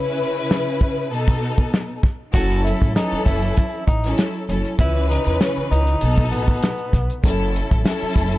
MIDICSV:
0, 0, Header, 1, 6, 480
1, 0, Start_track
1, 0, Tempo, 612245
1, 1834, Time_signature, 4, 2, 24, 8
1, 6571, End_track
2, 0, Start_track
2, 0, Title_t, "Tenor saxophone"
2, 0, Program_c, 0, 66
2, 1834, Note_on_c, 0, 66, 105
2, 2050, Note_off_c, 0, 66, 0
2, 2069, Note_on_c, 0, 64, 84
2, 2288, Note_off_c, 0, 64, 0
2, 2314, Note_on_c, 0, 63, 92
2, 2530, Note_off_c, 0, 63, 0
2, 2548, Note_on_c, 0, 64, 83
2, 3002, Note_off_c, 0, 64, 0
2, 3035, Note_on_c, 0, 63, 80
2, 3251, Note_off_c, 0, 63, 0
2, 3762, Note_on_c, 0, 64, 105
2, 3974, Note_off_c, 0, 64, 0
2, 3997, Note_on_c, 0, 63, 80
2, 4211, Note_off_c, 0, 63, 0
2, 4237, Note_on_c, 0, 61, 74
2, 4452, Note_off_c, 0, 61, 0
2, 4475, Note_on_c, 0, 63, 91
2, 4926, Note_off_c, 0, 63, 0
2, 4947, Note_on_c, 0, 59, 93
2, 5639, Note_off_c, 0, 59, 0
2, 6571, End_track
3, 0, Start_track
3, 0, Title_t, "String section"
3, 0, Program_c, 1, 48
3, 0, Note_on_c, 1, 49, 97
3, 0, Note_on_c, 1, 61, 94
3, 0, Note_on_c, 1, 64, 98
3, 0, Note_on_c, 1, 71, 124
3, 864, Note_on_c, 1, 47, 102
3, 868, Note_off_c, 1, 49, 0
3, 871, Note_on_c, 1, 59, 95
3, 872, Note_off_c, 1, 61, 0
3, 875, Note_off_c, 1, 64, 0
3, 876, Note_on_c, 1, 63, 90
3, 878, Note_off_c, 1, 71, 0
3, 883, Note_on_c, 1, 69, 111
3, 1536, Note_off_c, 1, 47, 0
3, 1540, Note_off_c, 1, 59, 0
3, 1542, Note_off_c, 1, 63, 0
3, 1546, Note_off_c, 1, 69, 0
3, 1822, Note_on_c, 1, 54, 92
3, 1828, Note_on_c, 1, 61, 89
3, 1834, Note_on_c, 1, 64, 84
3, 1841, Note_on_c, 1, 69, 112
3, 2273, Note_off_c, 1, 54, 0
3, 2276, Note_off_c, 1, 61, 0
3, 2279, Note_off_c, 1, 64, 0
3, 2282, Note_off_c, 1, 69, 0
3, 2304, Note_on_c, 1, 54, 93
3, 2309, Note_on_c, 1, 61, 99
3, 2316, Note_on_c, 1, 52, 89
3, 2323, Note_on_c, 1, 69, 120
3, 2976, Note_off_c, 1, 54, 0
3, 2979, Note_off_c, 1, 61, 0
3, 2982, Note_off_c, 1, 52, 0
3, 2986, Note_off_c, 1, 69, 0
3, 3165, Note_on_c, 1, 54, 93
3, 3171, Note_on_c, 1, 61, 89
3, 3177, Note_on_c, 1, 64, 94
3, 3184, Note_on_c, 1, 69, 100
3, 3488, Note_off_c, 1, 54, 0
3, 3491, Note_off_c, 1, 61, 0
3, 3494, Note_off_c, 1, 64, 0
3, 3498, Note_off_c, 1, 69, 0
3, 3512, Note_on_c, 1, 54, 76
3, 3518, Note_on_c, 1, 61, 70
3, 3525, Note_on_c, 1, 64, 67
3, 3532, Note_on_c, 1, 69, 93
3, 3736, Note_off_c, 1, 54, 0
3, 3738, Note_off_c, 1, 61, 0
3, 3742, Note_off_c, 1, 64, 0
3, 3745, Note_off_c, 1, 69, 0
3, 3745, Note_on_c, 1, 49, 98
3, 3751, Note_on_c, 1, 61, 93
3, 3758, Note_on_c, 1, 52, 98
3, 3764, Note_on_c, 1, 71, 123
3, 4706, Note_on_c, 1, 47, 103
3, 4710, Note_off_c, 1, 49, 0
3, 4712, Note_off_c, 1, 61, 0
3, 4712, Note_on_c, 1, 59, 93
3, 4716, Note_off_c, 1, 52, 0
3, 4719, Note_off_c, 1, 71, 0
3, 4719, Note_on_c, 1, 63, 91
3, 4726, Note_on_c, 1, 69, 114
3, 5377, Note_off_c, 1, 47, 0
3, 5380, Note_off_c, 1, 59, 0
3, 5384, Note_off_c, 1, 63, 0
3, 5387, Note_off_c, 1, 69, 0
3, 5664, Note_on_c, 1, 54, 89
3, 5670, Note_on_c, 1, 61, 85
3, 5677, Note_on_c, 1, 64, 86
3, 5684, Note_on_c, 1, 69, 115
3, 6114, Note_off_c, 1, 54, 0
3, 6117, Note_off_c, 1, 61, 0
3, 6121, Note_off_c, 1, 64, 0
3, 6124, Note_off_c, 1, 69, 0
3, 6143, Note_on_c, 1, 54, 95
3, 6149, Note_on_c, 1, 61, 98
3, 6156, Note_on_c, 1, 64, 96
3, 6162, Note_on_c, 1, 69, 120
3, 6571, Note_off_c, 1, 54, 0
3, 6571, Note_off_c, 1, 61, 0
3, 6571, Note_off_c, 1, 64, 0
3, 6571, Note_off_c, 1, 69, 0
3, 6571, End_track
4, 0, Start_track
4, 0, Title_t, "Upright bass"
4, 0, Program_c, 2, 32
4, 1835, Note_on_c, 2, 30, 96
4, 2121, Note_off_c, 2, 30, 0
4, 2210, Note_on_c, 2, 33, 83
4, 2293, Note_off_c, 2, 33, 0
4, 2559, Note_on_c, 2, 30, 88
4, 2743, Note_off_c, 2, 30, 0
4, 3041, Note_on_c, 2, 33, 88
4, 3224, Note_off_c, 2, 33, 0
4, 3519, Note_on_c, 2, 30, 84
4, 3617, Note_off_c, 2, 30, 0
4, 3755, Note_on_c, 2, 37, 108
4, 4041, Note_off_c, 2, 37, 0
4, 4130, Note_on_c, 2, 40, 85
4, 4213, Note_off_c, 2, 40, 0
4, 4478, Note_on_c, 2, 37, 92
4, 4662, Note_off_c, 2, 37, 0
4, 4721, Note_on_c, 2, 35, 100
4, 4960, Note_off_c, 2, 35, 0
4, 4960, Note_on_c, 2, 33, 86
4, 5143, Note_off_c, 2, 33, 0
4, 5437, Note_on_c, 2, 35, 85
4, 5536, Note_off_c, 2, 35, 0
4, 5674, Note_on_c, 2, 30, 101
4, 5960, Note_off_c, 2, 30, 0
4, 6050, Note_on_c, 2, 33, 83
4, 6133, Note_off_c, 2, 33, 0
4, 6396, Note_on_c, 2, 30, 90
4, 6571, Note_off_c, 2, 30, 0
4, 6571, End_track
5, 0, Start_track
5, 0, Title_t, "Muted upright bass strokes"
5, 2449, Note_on_c, 9, 29, 46
5, 2527, Note_off_c, 9, 29, 0
5, 4369, Note_on_c, 9, 29, 46
5, 4447, Note_off_c, 9, 29, 0
5, 6289, Note_on_c, 9, 29, 47
5, 6367, Note_off_c, 9, 29, 0
5, 6571, End_track
6, 0, Start_track
6, 0, Title_t, "Drums"
6, 399, Note_on_c, 9, 38, 111
6, 477, Note_off_c, 9, 38, 0
6, 635, Note_on_c, 9, 36, 92
6, 713, Note_off_c, 9, 36, 0
6, 1002, Note_on_c, 9, 36, 91
6, 1080, Note_off_c, 9, 36, 0
6, 1238, Note_on_c, 9, 36, 97
6, 1317, Note_off_c, 9, 36, 0
6, 1362, Note_on_c, 9, 38, 112
6, 1441, Note_off_c, 9, 38, 0
6, 1594, Note_on_c, 9, 36, 101
6, 1599, Note_on_c, 9, 38, 35
6, 1673, Note_off_c, 9, 36, 0
6, 1678, Note_off_c, 9, 38, 0
6, 1833, Note_on_c, 9, 36, 115
6, 1836, Note_on_c, 9, 42, 91
6, 1912, Note_off_c, 9, 36, 0
6, 1915, Note_off_c, 9, 42, 0
6, 1973, Note_on_c, 9, 42, 36
6, 2052, Note_off_c, 9, 42, 0
6, 2090, Note_on_c, 9, 42, 79
6, 2168, Note_off_c, 9, 42, 0
6, 2208, Note_on_c, 9, 36, 90
6, 2211, Note_on_c, 9, 42, 50
6, 2287, Note_off_c, 9, 36, 0
6, 2289, Note_off_c, 9, 42, 0
6, 2321, Note_on_c, 9, 38, 110
6, 2325, Note_on_c, 9, 42, 100
6, 2399, Note_off_c, 9, 38, 0
6, 2403, Note_off_c, 9, 42, 0
6, 2556, Note_on_c, 9, 36, 88
6, 2569, Note_on_c, 9, 42, 79
6, 2635, Note_off_c, 9, 36, 0
6, 2647, Note_off_c, 9, 42, 0
6, 2685, Note_on_c, 9, 42, 55
6, 2764, Note_off_c, 9, 42, 0
6, 2796, Note_on_c, 9, 42, 87
6, 2803, Note_on_c, 9, 36, 87
6, 2875, Note_off_c, 9, 42, 0
6, 2881, Note_off_c, 9, 36, 0
6, 3039, Note_on_c, 9, 36, 92
6, 3042, Note_on_c, 9, 42, 71
6, 3117, Note_off_c, 9, 36, 0
6, 3121, Note_off_c, 9, 42, 0
6, 3166, Note_on_c, 9, 42, 51
6, 3244, Note_off_c, 9, 42, 0
6, 3275, Note_on_c, 9, 42, 100
6, 3283, Note_on_c, 9, 38, 114
6, 3353, Note_off_c, 9, 42, 0
6, 3361, Note_off_c, 9, 38, 0
6, 3524, Note_on_c, 9, 42, 76
6, 3602, Note_off_c, 9, 42, 0
6, 3645, Note_on_c, 9, 42, 56
6, 3724, Note_off_c, 9, 42, 0
6, 3754, Note_on_c, 9, 36, 122
6, 3756, Note_on_c, 9, 42, 90
6, 3832, Note_off_c, 9, 36, 0
6, 3834, Note_off_c, 9, 42, 0
6, 3893, Note_on_c, 9, 42, 36
6, 3971, Note_off_c, 9, 42, 0
6, 4009, Note_on_c, 9, 42, 81
6, 4087, Note_off_c, 9, 42, 0
6, 4131, Note_on_c, 9, 42, 50
6, 4209, Note_off_c, 9, 42, 0
6, 4239, Note_on_c, 9, 38, 110
6, 4243, Note_on_c, 9, 42, 97
6, 4318, Note_off_c, 9, 38, 0
6, 4321, Note_off_c, 9, 42, 0
6, 4487, Note_on_c, 9, 42, 78
6, 4565, Note_off_c, 9, 42, 0
6, 4603, Note_on_c, 9, 42, 57
6, 4681, Note_off_c, 9, 42, 0
6, 4713, Note_on_c, 9, 42, 92
6, 4791, Note_off_c, 9, 42, 0
6, 4842, Note_on_c, 9, 36, 90
6, 4921, Note_off_c, 9, 36, 0
6, 4959, Note_on_c, 9, 42, 69
6, 5037, Note_off_c, 9, 42, 0
6, 5080, Note_on_c, 9, 36, 95
6, 5085, Note_on_c, 9, 42, 50
6, 5158, Note_off_c, 9, 36, 0
6, 5164, Note_off_c, 9, 42, 0
6, 5195, Note_on_c, 9, 42, 101
6, 5203, Note_on_c, 9, 38, 112
6, 5273, Note_off_c, 9, 42, 0
6, 5281, Note_off_c, 9, 38, 0
6, 5319, Note_on_c, 9, 42, 35
6, 5398, Note_off_c, 9, 42, 0
6, 5435, Note_on_c, 9, 36, 102
6, 5440, Note_on_c, 9, 38, 35
6, 5443, Note_on_c, 9, 42, 78
6, 5513, Note_off_c, 9, 36, 0
6, 5518, Note_off_c, 9, 38, 0
6, 5522, Note_off_c, 9, 42, 0
6, 5565, Note_on_c, 9, 42, 57
6, 5644, Note_off_c, 9, 42, 0
6, 5673, Note_on_c, 9, 36, 113
6, 5676, Note_on_c, 9, 42, 92
6, 5752, Note_off_c, 9, 36, 0
6, 5755, Note_off_c, 9, 42, 0
6, 5928, Note_on_c, 9, 42, 80
6, 6006, Note_off_c, 9, 42, 0
6, 6048, Note_on_c, 9, 36, 92
6, 6049, Note_on_c, 9, 42, 51
6, 6126, Note_off_c, 9, 36, 0
6, 6127, Note_off_c, 9, 42, 0
6, 6158, Note_on_c, 9, 38, 110
6, 6162, Note_on_c, 9, 42, 100
6, 6237, Note_off_c, 9, 38, 0
6, 6241, Note_off_c, 9, 42, 0
6, 6395, Note_on_c, 9, 36, 91
6, 6407, Note_on_c, 9, 42, 81
6, 6474, Note_off_c, 9, 36, 0
6, 6485, Note_off_c, 9, 42, 0
6, 6523, Note_on_c, 9, 42, 58
6, 6571, Note_off_c, 9, 42, 0
6, 6571, End_track
0, 0, End_of_file